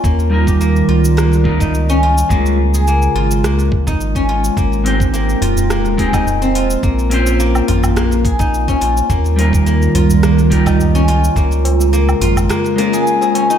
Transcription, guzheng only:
X:1
M:4/4
L:1/16
Q:"Swing 16ths" 1/4=106
K:Ebmix
V:1 name="Guzheng"
B,3 G B,2 F z B, z2 E z D F z | B,3 A B,2 F z B, z2 E z D F z | B,4 B,2 F z B, z A E z C F z | B,4 B,2 F z B, z A E z D F z |
B,4 B,2 F z B, z G E z D F z | B,4 B,2 F z B, z B, A z A D E |]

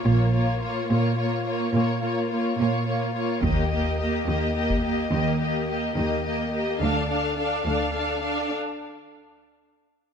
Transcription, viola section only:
X:1
M:12/8
L:1/8
Q:3/8=71
K:Bblyd
V:1 name="Viola section"
B, B, B, B, B, B, B, B, B, B, B, B, | B, B, B, B, B, B, B, B, B, B, B, B, | D D D D D D z6 |]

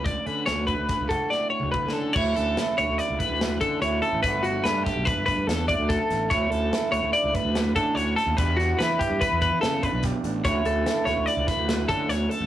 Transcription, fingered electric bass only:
X:1
M:5/4
L:1/16
Q:1/4=145
K:D
V:1 name="Fingered electric bass" clef=bass
C,,2 D,2 D,,3 D,, z C,,2 z4 D,, z D,3 | D,,2 D,,2 z2 D,, D,, z C,, z D,,3 D,2 D,,2 z A,,, | G,,,4 G,,2 z B,,, z G,,,2 G,, E,,3 D,,2 z A,,,2 | D,,2 D,,2 z2 D,, D,, z C,, z D,,3 D,2 D,,2 z _E,, |
E,,4 E,2 z G,, z E,,2 E, C,3 B,,,2 z A,,,2 | D,,2 D,,2 z2 D,, D,, z C,, z D,,3 D,2 D,,2 z A,,, |]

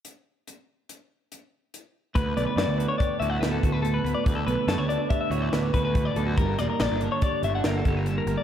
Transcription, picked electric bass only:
X:1
M:5/4
L:1/16
Q:1/4=142
K:D
V:1 name="Picked electric bass" clef=bass
z16 z4 | D,,2 B,,, z F,, D,,2 z3 D,,2 D,,2 D,,4 D,, z | D,,2 B,,, z F,, D,,2 z3 D,,2 D,,2 D,,4 D,,2 | G,,,2 E,,, z _B,,, G,,,2 z3 G,,,2 G,,,2 G,,,4 G,,, z |]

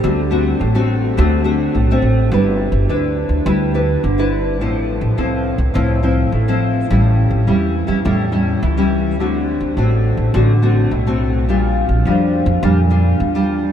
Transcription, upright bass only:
X:1
M:4/4
L:1/16
Q:1/4=105
K:G
V:1 name="Upright bass" clef=bass
D,,4 A,,,4 D,,4 B,,,2 A,,,2 | G,,,3 G,,, D,,3 D,, D,,4 G,,,4 | A,,,3 A,,, C,,3 C,, C,,4 A,,,4 | A,,,3 A,,, E,,3 E,, E,,4 ^C,,4 |
D,,3 D,, A,,,3 A,,, A,,,4 B,,,4 | _B,,,3 B,,, =F,,3 F,, F,,4 E,,4 |]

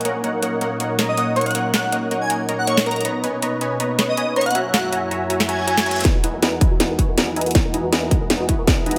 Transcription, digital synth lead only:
X:1
M:4/4
L:1/16
Q:"Swing 16ths" 1/4=160
K:Elyd
V:1 name="Digital synth lead"
z8 z3 d d z c f | z2 f z4 g z3 f c z A A | z8 z3 d d z c f | z2 f z6 z g4 z2 |
z16 | z16 |]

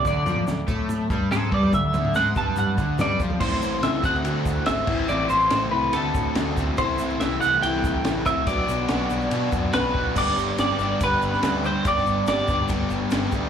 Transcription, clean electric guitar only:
X:1
M:4/4
L:1/8
Q:1/4=142
K:Dmix
V:1 name="Clean electric guitar"
d2 z4 A d | e2 f a f2 d z | c2 e f3 e2 | d c2 B A3 z |
c2 e f g3 e | d6 B2 | d2 d2 B3 c | d2 d2 z4 |]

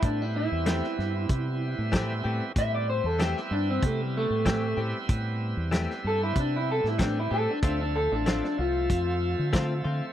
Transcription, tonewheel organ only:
X:1
M:4/4
L:1/8
Q:1/4=95
K:Am
V:1 name="Tonewheel organ"
[G,B,CE]8 | [G,B,CE]8- | [G,B,CE]8 | [F,A,Ce]8 |]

